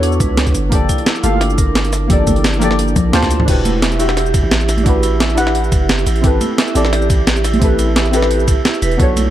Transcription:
Already playing: E2 B3 D4 E4 F#4 A4 B4 C#5 E5
0.03 D4, closed hi-hat
0.12 shaker
0.20 C#2 B4, kick, closed hi-hat, shaker
0.37 snare, closed hi-hat
0.47 kick, closed hi-hat, shaker
0.55 G1, closed hi-hat, shaker
0.69 F3 A#3 G4, kick, closed hi-hat
0.73 A4 D5
0.89 E4, kick, closed hi-hat, shaker
0.98 closed hi-hat
1.06 E4, snare, closed hi-hat
1.16 shaker
1.22 G1 A#3 F4 G4 A4 F5, closed hi-hat, high conga, shaker
1.41 D4, snare, closed hi-hat
1.50 shaker
1.58 A#4, kick, closed hi-hat, shaker
1.75 snare, closed hi-hat
1.85 closed hi-hat, shaker
1.93 snare, closed hi-hat, shaker
2.07 G1 F3 A#3 G4 A4, kick, closed hi-hat
2.13 D5
2.27 E4, kick, closed hi-hat, high conga, shaker
2.36 closed hi-hat
2.44 snare, closed hi-hat
2.54 shaker
2.59 F3 A#3 G4 A4, snare, closed hi-hat, high conga, shaker
2.64 D5
2.71 snare
2.79 D4, closed hi-hat
2.88 shaker
2.96 A#1 A#4, kick, closed hi-hat, high tom, shaker
3.12 D2 A#3 F4 G4 C5 A5, snare, closed hi-hat
3.22 kick, snare, closed hi-hat, shaker
3.31 closed hi-hat, shaker
3.40 mid tom
3.45 E1 D4 E4 F#4 G4, kick, closed hi-hat, crash
3.50 B4
3.65 E4, closed hi-hat, ride bell, high conga, shaker
3.82 E5, snare, closed hi-hat
3.92 shaker
3.98 D4 E4 F#4 G4 E5, closed hi-hat, ride bell, shaker
4.09 snare
4.17 G4, snare, closed hi-hat
4.26 shaker
4.34 kick, closed hi-hat, ride bell, shaker
4.43 A1
4.51 snare, closed hi-hat
4.61 shaker
4.69 E4, snare, closed hi-hat, ride bell, shaker
4.77 closed hi-hat, high conga
4.83 D4 E4 F#4 G4, kick, closed hi-hat
4.88 B4
5.03 E4, closed hi-hat, ride bell, shaker
5.20 E5, snare, closed hi-hat
5.30 shaker
5.35 D4 E4 G4 F#5, snare, closed hi-hat, ride bell, shaker
5.40 B4
5.47 snare
5.55 G4, closed hi-hat
5.64 shaker
5.72 F#1, kick, closed hi-hat, ride bell, shaker
5.89 snare, closed hi-hat
5.99 shaker
6.06 A1 E4, closed hi-hat, ride bell, shaker
6.16 closed hi-hat
6.21 C4 E4 G4 A4, kick, closed hi-hat
6.26 B4
6.41 E4, closed hi-hat, ride bell, high conga, shaker
6.58 E5, snare, closed hi-hat
6.67 shaker
6.74 A1 C4 E4 G4 A4 D5, closed hi-hat, ride bell, shaker
6.85 snare
6.93 G4, snare, closed hi-hat
7.02 shaker
7.10 kick, closed hi-hat, ride bell, shaker
7.27 snare, closed hi-hat
7.36 shaker
7.44 E4, snare, closed hi-hat, ride bell, shaker
7.53 closed hi-hat, high conga
7.59 A1 C4 E4 G4, kick, closed hi-hat
7.63 A4 B4
7.79 E4, closed hi-hat, ride bell, shaker
7.96 E5, snare, closed hi-hat
8.05 shaker
8.11 C4 E4 G4 A4, snare, closed hi-hat, ride bell, shaker
8.16 B4
8.23 snare
8.31 G4, closed hi-hat
8.40 shaker
8.48 E4, kick, closed hi-hat, ride bell, shaker
8.65 E4, snare, closed hi-hat
8.74 shaker
8.82 E1 B4, closed hi-hat, ride bell, shaker
8.91 closed hi-hat
8.97 B1 B3 D4 F#4, kick, closed hi-hat
9.01 A4 C#5
9.17 E4, closed hi-hat, ride bell, high conga, shaker

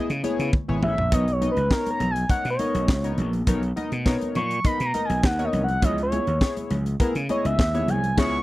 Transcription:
0.10 C#3, closed hi-hat
0.23 B3 E4 G#4 C#5, closed hi-hat, muted conga, high conga
0.39 C#3, closed hi-hat
0.53 kick, high tom, muted conga, high conga
0.68 G#1 B3 E4 G#4 C#5, mid tom
0.82 A1 E5, mid tom, muted conga, high conga, low conga
0.98 A#1, floor tom
1.12 B1 B3 D#4 A#4 C#5 D#5, kick, closed hi-hat, low conga
1.28 closed hi-hat
1.32 C#5
1.41 B3 D#4 A#4 D#5, closed hi-hat, muted conga, high conga
1.52 B4
1.57 C#2, closed hi-hat
1.71 B3 D#4 A#4 C#5, kick, snare, muted conga
1.86 closed hi-hat, high conga
1.91 A#5
2.00 B1, closed hi-hat, muted conga, low conga
2.11 G#5
2.16 closed hi-hat
2.29 B3 D#4 A#4 C#5 F#5, kick, closed hi-hat, high conga
2.45 B2, closed hi-hat
2.50 C#5
2.59 B3 D#4 A#4 D#5, closed hi-hat, muted conga, high conga
2.75 B1, closed hi-hat
2.88 C#2, kick, snare, muted conga, high conga
3.04 B3 D#4 A#4 C#5, closed hi-hat
3.18 A#1, closed hi-hat, muted conga, high conga, low conga
3.33 closed hi-hat
3.47 B1 B3 D#4 A#4 C#5, kick, closed hi-hat, muted conga, low conga
3.63 closed hi-hat
3.76 B3 D#4 A#4 D#5, closed hi-hat, high conga
3.92 B2, closed hi-hat
4.05 B3 D#4 A#4 C#5, kick, snare, muted conga
4.21 closed hi-hat, high conga
4.35 A#2 C#6, closed hi-hat, muted conga, low conga
4.51 closed hi-hat
4.65 B3 D#4 A#4 D#5 B5, muted slap bass stroke, kick, closed hi-hat, high conga
4.80 B2, closed hi-hat
4.85 A#5
4.94 B3 D#4 A#4 D#5, closed hi-hat, muted conga, high conga
5.05 G#5
5.09 B1, closed hi-hat
5.23 D#2 F#5, kick, snare, high conga
5.39 B3 D#4 A#4 C#5, closed hi-hat
5.45 D#5
5.53 C2, closed hi-hat, high conga, low conga
5.64 F#5
5.69 closed hi-hat
5.82 C#2 B3 E4 G#4 C#5 D#5, kick, closed hi-hat, muted conga, low conga
5.98 closed hi-hat
6.03 C#5
6.12 B3 E4 G#4 C#5, closed hi-hat, high conga
6.27 D#2, closed hi-hat
6.41 B3 E4 G#4 C#5, kick, snare, muted conga
6.57 closed hi-hat, high conga
6.70 C#2, closed hi-hat, low conga
6.86 closed hi-hat
7.00 B3 E4 G#4 A#4, kick, closed hi-hat, muted conga, high conga
7.15 C#3, closed hi-hat
7.29 B3 E4 G#4 C#5 D#5, closed hi-hat, muted conga, high conga
7.45 C#2 E5, closed hi-hat
7.59 D#2, kick, snare, muted conga, high conga
7.74 B3 E4 G#4 C#5, closed hi-hat
7.88 C2 G#5, closed hi-hat, high conga, low conga
8.04 closed hi-hat
8.17 C#2 B3 E4 G#4 C#5 C#6, kick, snare, crash

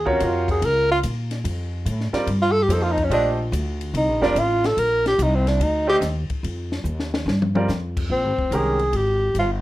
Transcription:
Already playing: D#2
0.05 C3 F4 F#4 A#4 C#5, kick
0.09 C#4
0.20 F2 F4, hi-hat pedal, ride
0.48 G#4, kick, ride
0.62 C#2 A#4, ride
0.92 F4
1.03 A#2, hi-hat pedal, ride
1.31 snare, ride
1.44 F2, ride
1.85 A2, hi-hat pedal, ride
2.01 snare
2.13 G3 C4 F4 A#4 D5, muted upright bass stroke, snare, ride
2.27 G2, ride
2.42 F4
2.52 A4
2.63 G4
2.68 F2 F3 A#3 D#4 A4 C5, hi-hat pedal, ride
2.73 A4
2.83 F4
2.92 D#4
2.98 kick, ride
3.04 C#4
3.10 A#1 A3 D4 G4 C5 D#5, ride
3.52 D2, hi-hat pedal, ride
3.81 ride
3.94 C2 D#4, ride
4.09 A#1
4.21 F1 G3 C4 D4 F4 A#4 D5, snare
4.35 A1 F4, hi-hat pedal, ride
4.64 A4, snare, ride
4.77 A#1 A#4, ride
5.06 G4, snare, ride
5.18 C2, hi-hat pedal, ride
5.23 D#4
5.35 C4
5.47 D4, snare, ride
5.60 D2 D#4, ride
5.87 A3 D4 G4 C5 D#5
6.01 D#2, snare, hi-hat pedal, ride
6.29 muted upright bass stroke, kick, ride
6.43 F2, ride
6.72 snare
6.84 D#2, hi-hat pedal
7.00 snare
7.14 snare
7.26 G2, snare
7.42 mid tom
7.55 G3 C4 F4 A#4 D5, mid tom
7.68 F2, snare, hi-hat pedal
7.97 kick, crash
8.10 A#1 C4
8.24 G#1
8.37 F1, kick
8.51 C2 D#3 G#3 C#4 G4 A#4, hi-hat pedal, ride
8.55 G#4
8.79 ride
8.92 G#1 G4, ride
9.34 G1, hi-hat pedal, ride
9.39 F4

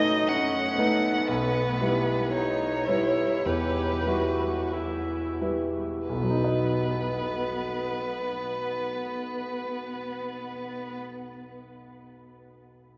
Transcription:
Already playing: F#2 A3 D#4 B4 D#5
0.28 C#4 F#5
0.77 A3 B3 D#4 B4
1.28 B1 B4
1.81 G3 E4 B4
2.33 D#4 C#5
2.87 G3 E4 B4
3.46 E2 G4 B4
4.07 G3 E4 F#4 B4
4.73 E4
5.41 G3 E4 B4
6.08 B1 B3 B4
6.16 B2
6.23 F#3
6.30 D#4
6.37 B4
6.44 D#5

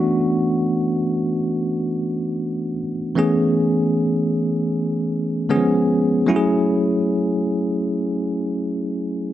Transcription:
Already playing: E3 A3 B3 C#4 D4 F#4
3.15 E3 A3 B3 C#4 G#4
5.49 D3 G#3 B3 C#4 G#4
5.56 F3
6.27 F#3 A3 C#4 E4 F#4
6.36 G#4

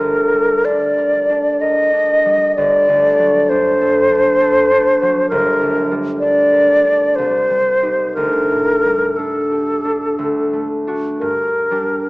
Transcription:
Already playing: G1 D4 A#4 D5
0.00 D2
0.33 G3
0.65 D4 D5
0.98 A#4
1.30 D4
1.61 A#4 D#5
1.93 D4
2.26 G3
2.56 G1 D5
2.88 D2
3.19 F#3
3.49 D4 C5
3.81 A4
4.11 D4
4.41 A4
4.71 D4
5.02 F#3
5.29 G1 A#4
5.61 D2
5.92 G3
6.19 D4 D5
6.52 A#4
6.85 D4
7.16 C2 C5
7.50 G3
7.83 D#4 G4
8.15 D2 A#4
8.52 A2
8.85 G3
9.17 D4 A4
9.52 G4
9.85 D4
10.19 D2
10.53 A3
10.87 D4 F#4
11.19 G2 A#4
11.71 G3 D4 G4

